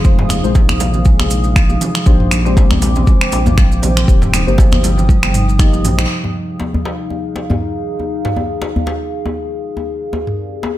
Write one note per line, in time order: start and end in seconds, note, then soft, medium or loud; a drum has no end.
0.00 2.02 G#4 medium
0.00 2.02 F5 medium
0.00 2.03 D#6 medium
0.04 0.40 F1 loud
0.04 0.41 G#3 medium
0.04 0.41 D#4 medium
0.04 0.41 F4 medium
0.04 0.41 C5 medium
0.04 kick loud
0.04 maracas soft
0.18 0.29 C3 medium
0.18 mid tom medium
0.18 muted conga soft
0.18 djembe slap medium
0.29 0.42 D#4 medium
0.29 finger snap medium
0.29 open hi-hat medium
0.29 djembe tone medium
0.29 high conga medium
0.29 maracas medium
0.44 1.78 A#1 loud
0.44 2.04 G#3 medium
0.44 2.04 D#4 medium
0.44 2.04 F4 medium
0.44 2.04 C5 loud
0.44 maracas soft
0.55 0.68 F3 loud
0.55 kick loud
0.55 djembe slap medium
0.55 maracas medium
0.69 finger snap medium
0.69 djembe bass medium
0.69 maracas soft
0.80 0.93 C3 medium
0.80 open hi-hat medium
0.80 djembe slap medium
0.80 muted conga medium
0.80 high conga medium
0.80 djembe tone medium
0.80 maracas medium
0.93 low conga medium
0.93 maracas soft
1.05 1.18 G#3 medium
1.05 kick loud
1.05 muted conga soft
1.05 high conga loud
1.05 maracas medium
1.19 1.30 C3 medium
1.19 finger snap medium
1.19 djembe tone medium
1.30 1.43 D#4 medium
1.30 open hi-hat medium
1.30 high conga medium
1.30 maracas medium
1.44 muted conga soft
1.44 maracas soft
1.56 1.69 F3 medium
1.56 finger snap medium
1.56 kick loud
1.56 maracas soft
1.70 1.76 D#4 medium
1.70 muted conga soft
1.70 djembe tone medium
1.70 high conga medium
1.70 maracas soft
1.81 open hi-hat medium
1.81 low conga loud
1.81 maracas medium
1.95 finger snap medium
1.95 muted conga medium
1.95 high conga medium
1.95 maracas soft
2.06 3.04 A#1 loud
2.06 2.19 F3 loud
2.06 2.42 G#3 medium
2.06 2.42 D4 medium
2.06 2.42 G4 medium
2.06 6.06 C5 medium
2.06 2.42 C5 loud
2.06 6.06 G5 medium
2.06 4.06 D6 medium
2.06 kick loud
2.06 djembe tone medium
2.06 maracas medium
2.20 mid tom medium
2.20 muted conga soft
2.31 2.44 D4 medium
2.31 finger snap medium
2.31 open hi-hat medium
2.31 high conga medium
2.31 maracas medium
2.45 4.06 G#3 medium
2.45 2.52 C4 loud
2.45 4.06 D4 medium
2.45 4.06 G4 medium
2.45 4.06 C5 loud
2.45 maracas soft
2.57 2.69 C3 medium
2.57 kick loud
2.57 muted conga soft
2.57 djembe slap medium
2.57 djembe tone medium
2.57 maracas soft
2.71 2.81 A#3 medium
2.71 finger snap medium
2.71 djembe bass loud
2.82 open hi-hat medium
2.82 djembe slap medium
2.82 muted conga soft
2.82 high conga medium
2.82 maracas medium
2.96 3.02 C4 medium
2.96 djembe tone medium
2.96 low conga medium
2.96 maracas soft
3.07 3.20 G#3 medium
3.07 kick loud
3.07 muted conga soft
3.07 high conga loud
3.07 low conga medium
3.07 maracas soft
3.21 finger snap medium
3.32 4.05 A#1 medium
3.32 3.45 D4 medium
3.32 open hi-hat medium
3.32 djembe slap medium
3.32 maracas medium
3.46 3.57 F3 medium
3.46 mid tom medium
3.46 muted conga medium
3.46 high conga medium
3.46 djembe tone medium
3.46 low conga medium
3.46 djembe bass loud
3.46 maracas soft
3.58 3.71 F3 loud
3.58 finger snap medium
3.58 kick loud
3.58 high conga medium
3.58 maracas soft
3.72 muted conga soft
3.72 maracas soft
3.82 3.95 C3 medium
3.82 open hi-hat medium
3.82 djembe tone medium
3.82 high conga medium
3.82 low conga loud
3.82 maracas medium
3.97 4.03 C4 medium
3.97 finger snap medium
3.97 muted conga medium
3.97 maracas soft
4.08 4.44 D#1 loud
4.08 4.44 A#3 medium
4.08 4.44 D#4 medium
4.08 4.44 G4 medium
4.08 4.44 C5 medium
4.08 6.08 D#6 medium
4.08 kick loud
4.08 maracas medium
4.22 4.32 C3 medium
4.22 mid tom medium
4.22 muted conga medium
4.22 djembe slap medium
4.22 maracas soft
4.33 4.46 D#4 medium
4.33 finger snap medium
4.33 open hi-hat medium
4.33 djembe tone medium
4.33 high conga medium
4.33 maracas medium
4.47 5.86 G1 loud
4.47 5.57 A#3 medium
4.47 5.57 D#4 medium
4.47 5.57 G4 medium
4.47 5.57 C5 loud
4.47 maracas soft
4.58 4.72 F3 loud
4.58 kick loud
4.58 djembe slap medium
4.58 maracas medium
4.72 finger snap medium
4.72 djembe tone medium
4.72 djembe bass loud
4.72 maracas soft
4.83 4.96 C3 medium
4.83 open hi-hat medium
4.83 muted conga medium
4.83 djembe slap medium
4.83 high conga medium
4.83 maracas medium
4.98 low conga medium
4.98 maracas soft
5.09 5.22 G3 medium
5.09 kick loud
5.09 muted conga soft
5.09 high conga loud
5.09 maracas soft
5.23 5.33 C3 medium
5.23 finger snap medium
5.23 djembe tone medium
5.23 maracas soft
5.34 5.47 D#4 medium
5.34 mid tom medium
5.34 open hi-hat medium
5.34 high conga medium
5.34 maracas medium
5.48 muted conga soft
5.48 maracas soft
5.59 5.73 F3 loud
5.59 6.07 A#3 medium
5.59 6.07 D#4 medium
5.59 6.07 G4 medium
5.59 6.07 D#5 loud
5.59 finger snap medium
5.59 kick loud
5.59 open hi-hat soft
5.59 djembe tone medium
5.59 maracas soft
5.73 5.79 D#4 medium
5.73 muted conga soft
5.73 high conga medium
5.73 maracas soft
5.84 6.06 A#1 medium
5.84 mid tom medium
5.84 open hi-hat medium
5.84 low conga loud
5.84 maracas medium
5.98 finger snap medium
5.98 muted conga medium
5.98 high conga medium
5.98 maracas soft
6.09 10.09 D#4 medium
6.09 10.78 G#4 medium
6.09 10.09 F5 medium
6.24 mid tom medium
6.24 djembe tone medium
6.60 djembe slap medium
6.60 djembe tone medium
6.74 djembe bass medium
6.85 djembe slap medium
7.10 djembe tone medium
7.36 djembe slap medium
7.50 mid tom medium
7.50 djembe tone medium
7.50 djembe bass medium
8.00 djembe tone medium
8.25 mid tom medium
8.25 djembe slap medium
8.36 djembe tone medium
8.62 djembe slap medium
8.76 djembe bass medium
8.86 djembe slap medium
8.86 djembe tone medium
9.26 djembe tone medium
9.77 djembe tone medium
10.13 10.78 C4 medium
10.13 10.78 G4 medium
10.13 10.78 A#4 medium
10.13 10.78 D5 medium
10.13 djembe tone medium
10.27 mid tom medium
10.63 djembe slap medium
10.63 djembe tone medium